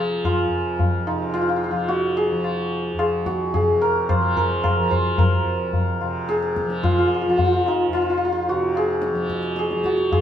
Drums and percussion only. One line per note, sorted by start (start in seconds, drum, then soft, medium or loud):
0.24 tabla tin medium
0.24 tabla ge medium
0.79 tabla tin medium
0.79 tabla ge medium
1.07 tabla na soft
1.34 tabla na medium
1.89 tabla tin medium
2.44 tabla na medium
2.99 tabla na medium
3.26 tabla ke medium
3.54 tabla tin medium
3.54 tabla ge medium
4.09 tabla na medium
4.09 tabla ge medium
4.36 tabla ge soft
4.64 tabla na medium
4.64 tabla ge medium
4.91 tabla ge soft
5.18 tabla tin medium
5.18 tabla ge medium
5.73 tabla tin medium
5.73 tabla ge medium
6.01 tabla na soft
6.29 tabla te medium
6.43 tabla te medium
6.56 tabla ke medium
6.70 tabla te medium
6.83 tabla tin medium
6.83 tabla ge medium
7.38 tabla tin medium
7.38 tabla ge medium
7.66 tabla na soft
7.93 tabla na medium
8.48 tabla tin medium
8.75 tabla na medium
9.02 tabla te medium
9.15 tabla te medium
9.30 tabla ke soft
9.43 tabla te medium
9.56 tabla te medium
9.71 tabla te medium
9.84 tabla ke medium
9.97 tabla te medium
10.12 tabla tin medium
10.12 tabla ge medium